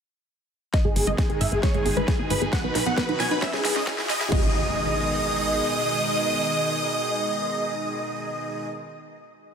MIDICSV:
0, 0, Header, 1, 9, 480
1, 0, Start_track
1, 0, Key_signature, 5, "minor"
1, 0, Tempo, 447761
1, 790, Time_signature, 4, 2, 24, 8
1, 10230, End_track
2, 0, Start_track
2, 0, Title_t, "Supersaw synth"
2, 0, Program_c, 0, 81
2, 790, Note_on_c, 0, 75, 94
2, 893, Note_off_c, 0, 75, 0
2, 910, Note_on_c, 0, 68, 65
2, 1013, Note_off_c, 0, 68, 0
2, 1030, Note_on_c, 0, 68, 63
2, 1133, Note_off_c, 0, 68, 0
2, 1150, Note_on_c, 0, 75, 90
2, 1253, Note_off_c, 0, 75, 0
2, 1270, Note_on_c, 0, 68, 60
2, 1373, Note_off_c, 0, 68, 0
2, 1391, Note_on_c, 0, 68, 61
2, 1493, Note_off_c, 0, 68, 0
2, 1509, Note_on_c, 0, 76, 92
2, 1612, Note_off_c, 0, 76, 0
2, 1631, Note_on_c, 0, 68, 63
2, 1733, Note_off_c, 0, 68, 0
2, 1749, Note_on_c, 0, 73, 97
2, 1853, Note_off_c, 0, 73, 0
2, 1870, Note_on_c, 0, 68, 65
2, 1973, Note_off_c, 0, 68, 0
2, 1991, Note_on_c, 0, 68, 64
2, 2093, Note_off_c, 0, 68, 0
2, 2111, Note_on_c, 0, 71, 89
2, 2213, Note_off_c, 0, 71, 0
2, 2231, Note_on_c, 0, 68, 64
2, 2333, Note_off_c, 0, 68, 0
2, 2351, Note_on_c, 0, 68, 64
2, 2453, Note_off_c, 0, 68, 0
2, 2471, Note_on_c, 0, 71, 90
2, 2573, Note_off_c, 0, 71, 0
2, 2590, Note_on_c, 0, 68, 64
2, 2693, Note_off_c, 0, 68, 0
2, 2710, Note_on_c, 0, 78, 93
2, 2813, Note_off_c, 0, 78, 0
2, 2831, Note_on_c, 0, 71, 66
2, 2933, Note_off_c, 0, 71, 0
2, 2951, Note_on_c, 0, 71, 67
2, 3053, Note_off_c, 0, 71, 0
2, 3070, Note_on_c, 0, 78, 90
2, 3173, Note_off_c, 0, 78, 0
2, 3190, Note_on_c, 0, 71, 64
2, 3293, Note_off_c, 0, 71, 0
2, 3310, Note_on_c, 0, 71, 61
2, 3413, Note_off_c, 0, 71, 0
2, 3431, Note_on_c, 0, 80, 90
2, 3533, Note_off_c, 0, 80, 0
2, 3550, Note_on_c, 0, 71, 66
2, 3653, Note_off_c, 0, 71, 0
2, 3670, Note_on_c, 0, 76, 94
2, 3773, Note_off_c, 0, 76, 0
2, 3790, Note_on_c, 0, 68, 64
2, 3893, Note_off_c, 0, 68, 0
2, 3911, Note_on_c, 0, 68, 63
2, 4013, Note_off_c, 0, 68, 0
2, 4030, Note_on_c, 0, 75, 90
2, 4133, Note_off_c, 0, 75, 0
2, 4149, Note_on_c, 0, 68, 65
2, 4252, Note_off_c, 0, 68, 0
2, 4270, Note_on_c, 0, 68, 66
2, 4373, Note_off_c, 0, 68, 0
2, 4390, Note_on_c, 0, 75, 90
2, 4493, Note_off_c, 0, 75, 0
2, 4509, Note_on_c, 0, 68, 64
2, 4612, Note_off_c, 0, 68, 0
2, 4629, Note_on_c, 0, 75, 102
2, 9285, Note_off_c, 0, 75, 0
2, 10230, End_track
3, 0, Start_track
3, 0, Title_t, "Synth pluck"
3, 0, Program_c, 1, 84
3, 790, Note_on_c, 1, 75, 97
3, 893, Note_off_c, 1, 75, 0
3, 910, Note_on_c, 1, 68, 63
3, 1013, Note_off_c, 1, 68, 0
3, 1031, Note_on_c, 1, 68, 62
3, 1133, Note_off_c, 1, 68, 0
3, 1150, Note_on_c, 1, 75, 95
3, 1253, Note_off_c, 1, 75, 0
3, 1270, Note_on_c, 1, 68, 62
3, 1373, Note_off_c, 1, 68, 0
3, 1390, Note_on_c, 1, 68, 64
3, 1493, Note_off_c, 1, 68, 0
3, 1510, Note_on_c, 1, 76, 90
3, 1613, Note_off_c, 1, 76, 0
3, 1630, Note_on_c, 1, 68, 63
3, 1733, Note_off_c, 1, 68, 0
3, 1750, Note_on_c, 1, 73, 90
3, 1853, Note_off_c, 1, 73, 0
3, 1870, Note_on_c, 1, 68, 64
3, 1973, Note_off_c, 1, 68, 0
3, 1990, Note_on_c, 1, 68, 61
3, 2093, Note_off_c, 1, 68, 0
3, 2110, Note_on_c, 1, 71, 90
3, 2213, Note_off_c, 1, 71, 0
3, 2230, Note_on_c, 1, 68, 65
3, 2333, Note_off_c, 1, 68, 0
3, 2350, Note_on_c, 1, 68, 64
3, 2453, Note_off_c, 1, 68, 0
3, 2471, Note_on_c, 1, 71, 84
3, 2573, Note_off_c, 1, 71, 0
3, 2592, Note_on_c, 1, 68, 67
3, 2694, Note_off_c, 1, 68, 0
3, 2711, Note_on_c, 1, 78, 95
3, 2813, Note_off_c, 1, 78, 0
3, 2830, Note_on_c, 1, 71, 63
3, 2933, Note_off_c, 1, 71, 0
3, 2951, Note_on_c, 1, 71, 67
3, 3053, Note_off_c, 1, 71, 0
3, 3071, Note_on_c, 1, 78, 100
3, 3173, Note_off_c, 1, 78, 0
3, 3190, Note_on_c, 1, 71, 64
3, 3293, Note_off_c, 1, 71, 0
3, 3310, Note_on_c, 1, 71, 65
3, 3413, Note_off_c, 1, 71, 0
3, 3430, Note_on_c, 1, 80, 92
3, 3533, Note_off_c, 1, 80, 0
3, 3551, Note_on_c, 1, 71, 67
3, 3653, Note_off_c, 1, 71, 0
3, 3671, Note_on_c, 1, 76, 94
3, 3773, Note_off_c, 1, 76, 0
3, 3789, Note_on_c, 1, 68, 66
3, 3892, Note_off_c, 1, 68, 0
3, 3910, Note_on_c, 1, 68, 65
3, 4013, Note_off_c, 1, 68, 0
3, 4031, Note_on_c, 1, 75, 92
3, 4133, Note_off_c, 1, 75, 0
3, 4151, Note_on_c, 1, 68, 69
3, 4253, Note_off_c, 1, 68, 0
3, 4271, Note_on_c, 1, 68, 66
3, 4373, Note_off_c, 1, 68, 0
3, 4391, Note_on_c, 1, 75, 89
3, 4493, Note_off_c, 1, 75, 0
3, 4511, Note_on_c, 1, 68, 67
3, 4613, Note_off_c, 1, 68, 0
3, 4631, Note_on_c, 1, 75, 93
3, 9551, Note_off_c, 1, 75, 0
3, 10230, End_track
4, 0, Start_track
4, 0, Title_t, "Synth arpeggio sound"
4, 0, Program_c, 2, 84
4, 790, Note_on_c, 2, 56, 89
4, 824, Note_off_c, 2, 56, 0
4, 910, Note_on_c, 2, 56, 72
4, 966, Note_off_c, 2, 56, 0
4, 1030, Note_on_c, 2, 59, 74
4, 1086, Note_off_c, 2, 59, 0
4, 1150, Note_on_c, 2, 56, 95
4, 1206, Note_off_c, 2, 56, 0
4, 1270, Note_on_c, 2, 56, 83
4, 1354, Note_off_c, 2, 56, 0
4, 1389, Note_on_c, 2, 59, 72
4, 1473, Note_off_c, 2, 59, 0
4, 1510, Note_on_c, 2, 44, 96
4, 1544, Note_off_c, 2, 44, 0
4, 1630, Note_on_c, 2, 59, 76
4, 1686, Note_off_c, 2, 59, 0
4, 1750, Note_on_c, 2, 56, 94
4, 1783, Note_off_c, 2, 56, 0
4, 1870, Note_on_c, 2, 56, 79
4, 1926, Note_off_c, 2, 56, 0
4, 1990, Note_on_c, 2, 59, 77
4, 2046, Note_off_c, 2, 59, 0
4, 2111, Note_on_c, 2, 56, 97
4, 2166, Note_off_c, 2, 56, 0
4, 2231, Note_on_c, 2, 56, 84
4, 2314, Note_off_c, 2, 56, 0
4, 2351, Note_on_c, 2, 59, 74
4, 2435, Note_off_c, 2, 59, 0
4, 2471, Note_on_c, 2, 44, 102
4, 2504, Note_off_c, 2, 44, 0
4, 2591, Note_on_c, 2, 59, 74
4, 2647, Note_off_c, 2, 59, 0
4, 2711, Note_on_c, 2, 59, 98
4, 2744, Note_off_c, 2, 59, 0
4, 2831, Note_on_c, 2, 59, 75
4, 2886, Note_off_c, 2, 59, 0
4, 2951, Note_on_c, 2, 63, 74
4, 3007, Note_off_c, 2, 63, 0
4, 3071, Note_on_c, 2, 59, 100
4, 3126, Note_off_c, 2, 59, 0
4, 3191, Note_on_c, 2, 59, 78
4, 3274, Note_off_c, 2, 59, 0
4, 3311, Note_on_c, 2, 63, 76
4, 3394, Note_off_c, 2, 63, 0
4, 3431, Note_on_c, 2, 47, 105
4, 3464, Note_off_c, 2, 47, 0
4, 3551, Note_on_c, 2, 63, 75
4, 3606, Note_off_c, 2, 63, 0
4, 3671, Note_on_c, 2, 61, 96
4, 3704, Note_off_c, 2, 61, 0
4, 3791, Note_on_c, 2, 61, 77
4, 3846, Note_off_c, 2, 61, 0
4, 3911, Note_on_c, 2, 64, 75
4, 3966, Note_off_c, 2, 64, 0
4, 4030, Note_on_c, 2, 61, 105
4, 4086, Note_off_c, 2, 61, 0
4, 4150, Note_on_c, 2, 61, 83
4, 4234, Note_off_c, 2, 61, 0
4, 4271, Note_on_c, 2, 64, 72
4, 4354, Note_off_c, 2, 64, 0
4, 4390, Note_on_c, 2, 49, 101
4, 4424, Note_off_c, 2, 49, 0
4, 4511, Note_on_c, 2, 64, 81
4, 4566, Note_off_c, 2, 64, 0
4, 4630, Note_on_c, 2, 56, 92
4, 4853, Note_off_c, 2, 56, 0
4, 10230, End_track
5, 0, Start_track
5, 0, Title_t, "Supersaw synth"
5, 0, Program_c, 3, 81
5, 790, Note_on_c, 3, 47, 74
5, 790, Note_on_c, 3, 51, 70
5, 790, Note_on_c, 3, 56, 74
5, 790, Note_on_c, 3, 63, 70
5, 790, Note_on_c, 3, 68, 83
5, 2691, Note_off_c, 3, 51, 0
5, 2691, Note_off_c, 3, 56, 0
5, 2691, Note_off_c, 3, 68, 0
5, 2711, Note_on_c, 3, 54, 71
5, 2711, Note_on_c, 3, 66, 83
5, 2712, Note_on_c, 3, 51, 69
5, 3642, Note_off_c, 3, 47, 0
5, 3661, Note_off_c, 3, 54, 0
5, 3661, Note_off_c, 3, 66, 0
5, 3662, Note_off_c, 3, 51, 0
5, 3671, Note_on_c, 3, 49, 75
5, 3671, Note_on_c, 3, 52, 72
5, 3671, Note_on_c, 3, 56, 71
5, 3671, Note_on_c, 3, 64, 87
5, 4592, Note_off_c, 3, 63, 0
5, 4621, Note_off_c, 3, 49, 0
5, 4621, Note_off_c, 3, 52, 0
5, 4621, Note_off_c, 3, 56, 0
5, 4621, Note_off_c, 3, 64, 0
5, 4632, Note_on_c, 3, 47, 76
5, 4632, Note_on_c, 3, 51, 73
5, 4632, Note_on_c, 3, 56, 75
5, 4632, Note_on_c, 3, 63, 69
5, 4632, Note_on_c, 3, 68, 91
5, 9286, Note_off_c, 3, 47, 0
5, 9286, Note_off_c, 3, 51, 0
5, 9286, Note_off_c, 3, 56, 0
5, 9286, Note_off_c, 3, 63, 0
5, 9286, Note_off_c, 3, 68, 0
5, 10230, End_track
6, 0, Start_track
6, 0, Title_t, "Analog synth bass"
6, 0, Program_c, 4, 38
6, 909, Note_on_c, 4, 32, 89
6, 999, Note_off_c, 4, 32, 0
6, 1030, Note_on_c, 4, 32, 94
6, 1119, Note_off_c, 4, 32, 0
6, 1150, Note_on_c, 4, 32, 92
6, 1239, Note_off_c, 4, 32, 0
6, 1390, Note_on_c, 4, 32, 84
6, 1480, Note_off_c, 4, 32, 0
6, 1509, Note_on_c, 4, 32, 94
6, 1599, Note_off_c, 4, 32, 0
6, 1630, Note_on_c, 4, 32, 93
6, 1719, Note_off_c, 4, 32, 0
6, 1870, Note_on_c, 4, 32, 84
6, 1960, Note_off_c, 4, 32, 0
6, 1989, Note_on_c, 4, 32, 99
6, 2079, Note_off_c, 4, 32, 0
6, 2110, Note_on_c, 4, 32, 98
6, 2199, Note_off_c, 4, 32, 0
6, 2350, Note_on_c, 4, 32, 83
6, 2440, Note_off_c, 4, 32, 0
6, 2470, Note_on_c, 4, 32, 105
6, 2560, Note_off_c, 4, 32, 0
6, 2590, Note_on_c, 4, 32, 89
6, 2680, Note_off_c, 4, 32, 0
6, 2831, Note_on_c, 4, 35, 84
6, 2920, Note_off_c, 4, 35, 0
6, 2951, Note_on_c, 4, 35, 98
6, 3040, Note_off_c, 4, 35, 0
6, 3070, Note_on_c, 4, 35, 96
6, 3160, Note_off_c, 4, 35, 0
6, 3310, Note_on_c, 4, 35, 83
6, 3400, Note_off_c, 4, 35, 0
6, 3430, Note_on_c, 4, 35, 98
6, 3520, Note_off_c, 4, 35, 0
6, 3550, Note_on_c, 4, 35, 93
6, 3640, Note_off_c, 4, 35, 0
6, 3790, Note_on_c, 4, 37, 82
6, 3880, Note_off_c, 4, 37, 0
6, 3910, Note_on_c, 4, 37, 100
6, 4000, Note_off_c, 4, 37, 0
6, 4031, Note_on_c, 4, 37, 99
6, 4120, Note_off_c, 4, 37, 0
6, 4271, Note_on_c, 4, 37, 86
6, 4360, Note_off_c, 4, 37, 0
6, 4391, Note_on_c, 4, 37, 98
6, 4480, Note_off_c, 4, 37, 0
6, 4511, Note_on_c, 4, 37, 92
6, 4600, Note_off_c, 4, 37, 0
6, 4631, Note_on_c, 4, 32, 89
6, 6028, Note_off_c, 4, 32, 0
6, 10230, End_track
7, 0, Start_track
7, 0, Title_t, "Impact"
7, 0, Program_c, 5, 103
7, 4631, Note_on_c, 5, 60, 67
7, 9594, Note_off_c, 5, 60, 0
7, 10230, End_track
8, 0, Start_track
8, 0, Title_t, "Riser"
8, 0, Program_c, 6, 103
8, 790, Note_on_c, 6, 60, 77
8, 4630, Note_off_c, 6, 60, 0
8, 10230, End_track
9, 0, Start_track
9, 0, Title_t, "Drums"
9, 790, Note_on_c, 9, 36, 107
9, 790, Note_on_c, 9, 38, 44
9, 790, Note_on_c, 9, 42, 77
9, 897, Note_off_c, 9, 36, 0
9, 897, Note_off_c, 9, 38, 0
9, 897, Note_off_c, 9, 42, 0
9, 1030, Note_on_c, 9, 46, 100
9, 1137, Note_off_c, 9, 46, 0
9, 1150, Note_on_c, 9, 42, 52
9, 1257, Note_off_c, 9, 42, 0
9, 1270, Note_on_c, 9, 36, 113
9, 1270, Note_on_c, 9, 38, 50
9, 1270, Note_on_c, 9, 42, 78
9, 1377, Note_off_c, 9, 36, 0
9, 1377, Note_off_c, 9, 38, 0
9, 1377, Note_off_c, 9, 42, 0
9, 1391, Note_on_c, 9, 42, 38
9, 1498, Note_off_c, 9, 42, 0
9, 1510, Note_on_c, 9, 46, 101
9, 1617, Note_off_c, 9, 46, 0
9, 1630, Note_on_c, 9, 42, 53
9, 1737, Note_off_c, 9, 42, 0
9, 1750, Note_on_c, 9, 36, 107
9, 1750, Note_on_c, 9, 38, 54
9, 1750, Note_on_c, 9, 42, 76
9, 1857, Note_off_c, 9, 36, 0
9, 1857, Note_off_c, 9, 38, 0
9, 1857, Note_off_c, 9, 42, 0
9, 1870, Note_on_c, 9, 42, 36
9, 1977, Note_off_c, 9, 42, 0
9, 1990, Note_on_c, 9, 46, 108
9, 2097, Note_off_c, 9, 46, 0
9, 2110, Note_on_c, 9, 42, 52
9, 2218, Note_off_c, 9, 42, 0
9, 2230, Note_on_c, 9, 36, 121
9, 2230, Note_on_c, 9, 38, 61
9, 2230, Note_on_c, 9, 42, 79
9, 2337, Note_off_c, 9, 36, 0
9, 2337, Note_off_c, 9, 38, 0
9, 2337, Note_off_c, 9, 42, 0
9, 2470, Note_on_c, 9, 46, 104
9, 2577, Note_off_c, 9, 46, 0
9, 2590, Note_on_c, 9, 42, 52
9, 2698, Note_off_c, 9, 42, 0
9, 2710, Note_on_c, 9, 36, 121
9, 2711, Note_on_c, 9, 38, 67
9, 2711, Note_on_c, 9, 42, 72
9, 2818, Note_off_c, 9, 36, 0
9, 2818, Note_off_c, 9, 38, 0
9, 2818, Note_off_c, 9, 42, 0
9, 2950, Note_on_c, 9, 38, 81
9, 2950, Note_on_c, 9, 46, 114
9, 3057, Note_off_c, 9, 38, 0
9, 3057, Note_off_c, 9, 46, 0
9, 3070, Note_on_c, 9, 42, 54
9, 3177, Note_off_c, 9, 42, 0
9, 3190, Note_on_c, 9, 38, 77
9, 3190, Note_on_c, 9, 42, 81
9, 3191, Note_on_c, 9, 36, 119
9, 3297, Note_off_c, 9, 38, 0
9, 3297, Note_off_c, 9, 42, 0
9, 3298, Note_off_c, 9, 36, 0
9, 3310, Note_on_c, 9, 42, 38
9, 3417, Note_off_c, 9, 42, 0
9, 3430, Note_on_c, 9, 38, 89
9, 3430, Note_on_c, 9, 46, 113
9, 3537, Note_off_c, 9, 38, 0
9, 3537, Note_off_c, 9, 46, 0
9, 3550, Note_on_c, 9, 42, 53
9, 3657, Note_off_c, 9, 42, 0
9, 3669, Note_on_c, 9, 38, 90
9, 3669, Note_on_c, 9, 42, 80
9, 3671, Note_on_c, 9, 36, 124
9, 3777, Note_off_c, 9, 38, 0
9, 3777, Note_off_c, 9, 42, 0
9, 3778, Note_off_c, 9, 36, 0
9, 3790, Note_on_c, 9, 38, 81
9, 3790, Note_on_c, 9, 42, 37
9, 3897, Note_off_c, 9, 38, 0
9, 3897, Note_off_c, 9, 42, 0
9, 3909, Note_on_c, 9, 38, 98
9, 3909, Note_on_c, 9, 46, 116
9, 4017, Note_off_c, 9, 38, 0
9, 4017, Note_off_c, 9, 46, 0
9, 4030, Note_on_c, 9, 38, 83
9, 4137, Note_off_c, 9, 38, 0
9, 4151, Note_on_c, 9, 36, 127
9, 4151, Note_on_c, 9, 38, 104
9, 4151, Note_on_c, 9, 42, 78
9, 4258, Note_off_c, 9, 36, 0
9, 4258, Note_off_c, 9, 38, 0
9, 4258, Note_off_c, 9, 42, 0
9, 4270, Note_on_c, 9, 38, 92
9, 4378, Note_off_c, 9, 38, 0
9, 4390, Note_on_c, 9, 38, 104
9, 4390, Note_on_c, 9, 46, 116
9, 4497, Note_off_c, 9, 38, 0
9, 4497, Note_off_c, 9, 46, 0
9, 4511, Note_on_c, 9, 38, 99
9, 4511, Note_on_c, 9, 42, 53
9, 4618, Note_off_c, 9, 38, 0
9, 4618, Note_off_c, 9, 42, 0
9, 4631, Note_on_c, 9, 36, 116
9, 4631, Note_on_c, 9, 49, 82
9, 4738, Note_off_c, 9, 36, 0
9, 4738, Note_off_c, 9, 49, 0
9, 10230, End_track
0, 0, End_of_file